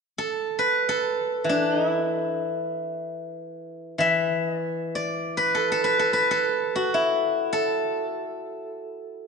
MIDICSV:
0, 0, Header, 1, 2, 480
1, 0, Start_track
1, 0, Tempo, 500000
1, 8901, End_track
2, 0, Start_track
2, 0, Title_t, "Guzheng"
2, 0, Program_c, 0, 107
2, 176, Note_on_c, 0, 69, 53
2, 563, Note_on_c, 0, 71, 58
2, 848, Note_off_c, 0, 69, 0
2, 852, Note_on_c, 0, 69, 55
2, 1386, Note_on_c, 0, 52, 36
2, 1434, Note_on_c, 0, 62, 49
2, 1674, Note_off_c, 0, 62, 0
2, 1674, Note_on_c, 0, 63, 49
2, 1818, Note_off_c, 0, 63, 0
2, 1818, Note_on_c, 0, 64, 49
2, 2528, Note_off_c, 0, 71, 0
2, 2960, Note_off_c, 0, 69, 0
2, 3812, Note_off_c, 0, 52, 0
2, 3824, Note_on_c, 0, 52, 41
2, 3844, Note_on_c, 0, 76, 62
2, 3940, Note_off_c, 0, 64, 0
2, 4295, Note_off_c, 0, 76, 0
2, 4295, Note_on_c, 0, 75, 62
2, 4401, Note_off_c, 0, 75, 0
2, 4401, Note_on_c, 0, 74, 62
2, 4754, Note_off_c, 0, 74, 0
2, 4754, Note_on_c, 0, 74, 58
2, 5157, Note_on_c, 0, 71, 56
2, 5324, Note_on_c, 0, 69, 50
2, 5484, Note_off_c, 0, 69, 0
2, 5488, Note_on_c, 0, 69, 56
2, 5603, Note_off_c, 0, 71, 0
2, 5607, Note_on_c, 0, 71, 55
2, 5749, Note_off_c, 0, 69, 0
2, 5753, Note_on_c, 0, 69, 54
2, 5883, Note_off_c, 0, 71, 0
2, 5887, Note_on_c, 0, 71, 59
2, 6052, Note_off_c, 0, 69, 0
2, 6056, Note_on_c, 0, 69, 55
2, 6233, Note_off_c, 0, 52, 0
2, 6485, Note_on_c, 0, 66, 54
2, 6528, Note_off_c, 0, 74, 0
2, 6663, Note_on_c, 0, 64, 49
2, 7221, Note_off_c, 0, 69, 0
2, 7225, Note_on_c, 0, 69, 52
2, 7851, Note_off_c, 0, 71, 0
2, 8820, Note_off_c, 0, 66, 0
2, 8901, Note_off_c, 0, 64, 0
2, 8901, Note_off_c, 0, 69, 0
2, 8901, End_track
0, 0, End_of_file